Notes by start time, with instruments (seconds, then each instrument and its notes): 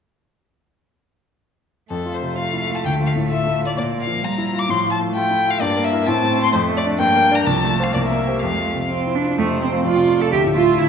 1.90 grand piano F2, cello A3, violin A4
2.06 grand piano F4
2.15 violin C5
2.22 grand piano C3
2.38 grand piano F4, violin F5
2.53 grand piano E4
2.70 grand piano F4
2.75 violin A5
2.85 grand piano D2, violin G5
3.00 grand piano F4
3.06 violin F5
3.16 grand piano A2
3.30 grand piano F4, violin E5
3.47 grand piano E4
3.61 grand piano F4
3.66 violin D5
3.77 grand piano A#2, cello A#3, violin D5
3.92 grand piano F4
4.02 violin F5
4.07 grand piano F3
4.22 cello G3, grand piano F4, violin A#5
4.38 grand piano E4
4.54 grand piano F4
4.59 violin D6
4.68 grand piano A2, cello F3, violin C6
4.85 grand piano F4
4.91 violin A5
5.01 grand piano A3
5.14 cello A3, grand piano F4, violin G5
5.31 grand piano E4
5.48 grand piano F4, violin F5
5.59 grand piano G2, cello A#3, violin D5
5.77 grand piano A#3
5.84 violin E5
5.93 grand piano E4 A#4
6.06 grand piano A2, cello C4, violin A5
6.23 grand piano A3
6.38 grand piano E4 C5
6.43 violin C6
6.53 grand piano F2, cello A3, violin C5
6.69 grand piano A3
6.77 violin D5
6.84 grand piano D4 D5
6.98 grand piano G2, cello A#3, violin G5
7.16 grand piano A#3
7.31 grand piano D4 D5, violin A#5
7.46 grand piano C2, cello F3, violin A5
7.64 grand piano A3
7.80 grand piano F4 C5, violin F5
7.94 grand piano C2, cello A#3, violin D5
8.06 violin E5
8.11 grand piano A#3
8.27 grand piano G4 C5
8.41 grand piano F2, cello A3, violin F5
8.60 grand piano F4
8.75 grand piano C3
8.89 cello C4, grand piano F4
9.07 grand piano E4
9.15 cello D4
9.23 grand piano F4
9.37 grand piano F2, viola A3, cello A3, violin C5
9.51 grand piano C3
9.61 grand piano A3, viola C4, cello C4
9.73 grand piano F4
9.84 grand piano F2, viola F4, cello F4, violin D5
9.96 grand piano C3
10.08 grand piano A3
10.20 grand piano F4, viola A4, cello A4
10.32 grand piano D2, viola G4, cello G4, violin E5
10.44 grand piano A2
10.54 grand piano A3, viola F4, cello F4
10.67 grand piano F4
10.78 grand piano D2, viola E4, cello E4